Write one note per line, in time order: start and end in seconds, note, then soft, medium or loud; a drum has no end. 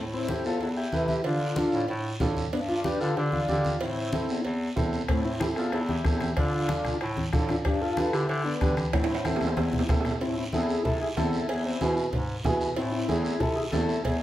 0.00 0.35 A2 medium
0.13 0.28 C4 medium
0.13 0.28 E4 medium
0.13 high conga soft
0.28 0.51 E4 medium
0.28 0.44 E4 medium
0.28 0.46 G4 medium
0.28 0.51 A4 medium
0.28 0.51 C5 medium
0.28 high conga medium
0.28 short guiro medium
0.44 0.57 E2 medium
0.44 0.60 F4 medium
0.44 0.60 A4 medium
0.44 short guiro medium
0.60 0.86 E2 medium
0.60 0.69 E4 medium
0.60 0.68 A4 loud
0.60 cowbell medium
0.60 high conga soft
0.60 long guiro medium
0.77 1.22 E4 medium
0.77 1.21 G4 medium
0.92 1.18 C3 medium
0.92 1.15 E4 medium
0.92 1.15 A4 medium
0.92 1.15 B4 medium
0.92 high conga medium
0.92 short guiro medium
1.08 high conga medium
1.08 short guiro medium
1.24 1.63 D3 medium
1.24 1.85 D4 medium
1.24 1.85 F4 medium
1.24 cowbell loud
1.24 long guiro medium
1.40 high conga soft
1.56 1.79 D4 medium
1.56 1.79 F4 medium
1.56 1.79 A4 medium
1.56 high conga medium
1.56 short guiro medium
1.72 1.85 A2 loud
1.72 short guiro medium
1.88 2.14 A2 loud
1.88 cowbell medium
1.88 high conga soft
1.88 long guiro medium
2.20 2.46 A2 medium
2.20 2.43 D4 medium
2.20 2.43 F4 medium
2.20 2.43 A4 medium
2.20 high conga medium
2.20 low conga medium
2.20 low timbale medium
2.20 short guiro medium
2.36 high conga medium
2.36 short guiro medium
2.52 2.91 G2 medium
2.52 2.60 B3 medium
2.52 2.60 D4 medium
2.52 cowbell loud
2.52 long guiro medium
2.68 2.84 D4 medium
2.68 2.83 F4 medium
2.68 high conga soft
2.84 3.00 D4 medium
2.84 3.07 D4 medium
2.84 2.99 G4 medium
2.84 3.08 G4 medium
2.84 3.08 B4 medium
2.84 high conga medium
2.84 short guiro medium
3.00 3.14 D3 medium
3.00 3.16 F4 medium
3.00 3.15 A4 medium
3.00 short guiro medium
3.16 3.42 D3 loud
3.16 3.32 D4 medium
3.16 3.31 G4 loud
3.16 cowbell medium
3.16 high conga soft
3.16 long guiro medium
3.32 3.77 D4 medium
3.32 3.82 F4 medium
3.32 high conga medium
3.48 3.74 D3 medium
3.48 3.71 D4 medium
3.48 3.71 G4 medium
3.48 3.71 D5 medium
3.48 high conga medium
3.48 short guiro medium
3.64 high conga medium
3.64 short guiro medium
3.81 4.19 A2 medium
3.81 4.41 C4 medium
3.81 4.41 E4 medium
3.81 cowbell loud
3.81 long guiro medium
3.96 high conga soft
4.12 4.35 C4 medium
4.12 4.35 E4 medium
4.12 4.35 A4 medium
4.12 high conga medium
4.12 short guiro medium
4.29 4.41 E2 medium
4.29 short guiro medium
4.44 4.70 E2 loud
4.44 cowbell medium
4.44 high conga soft
4.44 long guiro medium
4.76 5.03 E2 medium
4.76 4.99 C4 medium
4.76 4.99 E4 medium
4.76 4.99 A4 medium
4.76 high conga medium
4.76 low conga medium
4.76 short guiro medium
4.93 short guiro medium
5.08 5.47 A2 medium
5.08 5.24 A3 medium
5.08 5.24 C4 medium
5.08 bombo low medium
5.08 bombo rim medium
5.08 cowbell loud
5.08 long guiro medium
5.25 5.40 C4 medium
5.25 5.40 E4 medium
5.25 high conga soft
5.40 5.63 C4 medium
5.40 5.63 E4 medium
5.40 5.49 E4 medium
5.40 5.48 G4 medium
5.40 5.64 A4 medium
5.40 bombo rim medium
5.40 high conga medium
5.40 short guiro medium
5.56 5.69 E2 medium
5.56 5.72 F4 medium
5.56 5.71 A4 loud
5.56 bombo rim medium
5.56 short guiro medium
5.72 5.98 E2 loud
5.72 5.80 E4 medium
5.72 5.80 A4 medium
5.72 bombo rim medium
5.72 cowbell medium
5.72 high conga soft
5.72 long guiro medium
5.89 6.34 E4 medium
5.89 6.33 G4 medium
5.89 high conga medium
6.04 6.30 E2 medium
6.04 6.27 C4 medium
6.04 6.27 E4 medium
6.04 6.27 A4 medium
6.04 bombo low medium
6.04 bombo rim medium
6.04 high conga medium
6.04 short guiro medium
6.20 bombo rim medium
6.20 high conga medium
6.20 short guiro medium
6.37 6.75 D3 medium
6.37 6.97 D4 medium
6.37 6.97 F4 medium
6.37 bombo low medium
6.37 bombo rim medium
6.37 cowbell loud
6.37 long guiro medium
6.53 high conga soft
6.68 6.91 D4 medium
6.68 6.91 F4 medium
6.68 6.91 A4 medium
6.68 bombo rim medium
6.68 high conga medium
6.68 short guiro medium
6.85 bombo rim medium
6.85 low conga medium
6.85 short guiro medium
7.01 7.26 A2 loud
7.01 bombo rim medium
7.01 cowbell medium
7.01 high conga soft
7.01 long guiro medium
7.17 high conga medium
7.33 7.58 A2 medium
7.33 7.55 D4 medium
7.33 7.55 F4 medium
7.33 7.55 A4 loud
7.33 bombo low medium
7.33 bombo rim medium
7.33 high conga medium
7.33 low conga medium
7.33 short guiro medium
7.49 7.57 D4 medium
7.49 7.56 F4 loud
7.49 bombo rim medium
7.49 high conga medium
7.49 short guiro medium
7.65 8.03 G2 medium
7.65 7.80 D4 medium
7.65 7.82 G4 medium
7.65 bombo low medium
7.65 bombo rim medium
7.65 cowbell loud
7.65 long guiro medium
7.81 8.11 F4 medium
7.81 8.14 A4 loud
7.81 high conga soft
7.97 8.19 D4 medium
7.97 8.20 G4 medium
7.97 8.20 B4 medium
7.97 bombo rim medium
7.97 high conga medium
7.97 short guiro medium
8.13 8.26 D3 medium
8.13 8.43 E4 medium
8.13 8.43 G4 loud
8.13 bombo rim medium
8.13 short guiro medium
8.29 8.54 D3 loud
8.29 bombo rim medium
8.29 cowbell medium
8.29 high conga soft
8.29 long guiro medium
8.45 8.75 B3 medium
8.45 8.75 D4 medium
8.61 8.87 D3 medium
8.61 8.83 D4 medium
8.61 8.83 G4 medium
8.61 8.84 B4 medium
8.61 bombo low medium
8.61 bombo rim medium
8.61 high conga medium
8.61 short guiro medium
8.77 bombo rim medium
8.77 high conga medium
8.77 short guiro medium
8.93 9.31 A2 medium
8.93 9.08 A3 medium
8.93 9.08 C4 medium
8.93 bombo low medium
8.93 bombo rim medium
8.93 cowbell loud
8.93 high timbale loud
8.93 long guiro medium
9.04 high timbale medium
9.09 9.24 C4 medium
9.09 9.24 E4 medium
9.09 high conga soft
9.15 high timbale medium
9.25 9.47 C4 medium
9.25 9.86 C4 medium
9.25 9.47 E4 medium
9.25 9.85 E4 medium
9.25 9.48 A4 medium
9.25 bombo rim medium
9.25 high conga medium
9.25 high timbale medium
9.25 short guiro medium
9.36 low timbale medium
9.41 9.54 E2 medium
9.41 bombo rim medium
9.41 high conga medium
9.41 short guiro medium
9.47 low timbale medium
9.56 9.82 E2 loud
9.56 bombo rim medium
9.56 cowbell medium
9.56 high conga medium
9.56 low timbale medium
9.56 long guiro medium
9.73 low conga medium
9.79 low timbale medium
9.89 10.14 E2 medium
9.89 10.11 C4 medium
9.89 10.12 E4 medium
9.89 10.12 A4 medium
9.89 bombo low medium
9.89 bombo rim medium
9.89 low conga medium
9.89 low timbale medium
9.89 short guiro medium
10.01 low timbale medium
10.05 bombo rim medium
10.05 low conga medium
10.05 short guiro medium
10.11 low timbale medium
10.21 10.46 A2 medium
10.21 10.36 C4 medium
10.21 10.36 E4 medium
10.21 cowbell loud
10.21 high conga soft
10.21 long guiro medium
10.38 10.45 C4 medium
10.38 10.45 E4 medium
10.52 10.78 E2 loud
10.52 10.75 C4 medium
10.52 10.75 E4 medium
10.52 10.83 E4 medium
10.52 10.83 G#4 medium
10.52 10.76 A4 medium
10.52 high conga medium
10.52 short guiro medium
10.69 short guiro medium
10.84 11.10 C3 loud
10.84 11.00 E4 medium
10.84 11.00 A4 loud
10.84 cowbell medium
10.84 high conga soft
10.84 low conga medium
10.84 long guiro medium
11.01 11.09 E4 medium
11.01 11.08 G#4 medium
11.17 11.42 E2 medium
11.17 11.39 C4 medium
11.17 11.39 E4 medium
11.17 11.47 E4 medium
11.17 11.47 A4 medium
11.17 11.40 A4 medium
11.17 high conga medium
11.17 low timbale medium
11.17 short guiro medium
11.33 short guiro medium
11.49 11.74 E2 medium
11.49 11.64 E4 medium
11.49 11.64 G#4 loud
11.49 cowbell loud
11.49 high conga soft
11.49 long guiro medium
11.65 11.95 C4 medium
11.65 11.95 E4 medium
11.81 12.06 B2 loud
11.81 12.03 B3 medium
11.81 12.03 E4 medium
11.81 12.04 G#4 medium
11.81 high conga medium
11.81 short guiro medium
11.97 short guiro medium
12.13 12.38 G#2 medium
12.13 cowbell medium
12.13 high conga soft
12.13 low conga medium
12.13 long guiro medium
12.44 12.71 B2 medium
12.44 12.67 B3 medium
12.44 12.67 E4 medium
12.44 12.67 G#4 medium
12.44 high conga medium
12.44 low conga medium
12.44 low timbale medium
12.44 short guiro medium
12.61 short guiro medium
12.76 13.02 A2 medium
12.76 12.92 C4 medium
12.76 12.91 E4 medium
12.76 cowbell loud
12.76 high conga soft
12.76 long guiro medium
12.93 13.08 C4 medium
12.93 13.08 E4 medium
13.08 13.34 E2 medium
13.08 13.31 A3 medium
13.08 13.31 C4 medium
13.08 13.31 E4 medium
13.08 13.39 E4 medium
13.08 13.42 G#4 medium
13.08 high conga medium
13.08 short guiro medium
13.25 short guiro medium
13.40 13.66 C3 medium
13.40 13.56 E4 medium
13.40 13.57 A4 loud
13.40 cowbell medium
13.40 high conga soft
13.40 low conga medium
13.40 long guiro medium
13.56 13.64 E4 medium
13.56 13.63 G#4 medium
13.72 13.98 E2 medium
13.72 13.95 A3 medium
13.72 13.95 C4 medium
13.72 14.03 E4 medium
13.72 13.95 E4 medium
13.72 14.02 A4 loud
13.72 high conga medium
13.72 low timbale medium
13.72 short guiro medium
13.89 short guiro medium
14.04 14.23 E2 medium
14.04 14.19 E4 medium
14.04 14.21 G#4 medium
14.04 cowbell loud
14.04 high conga soft
14.04 low conga medium
14.04 long guiro medium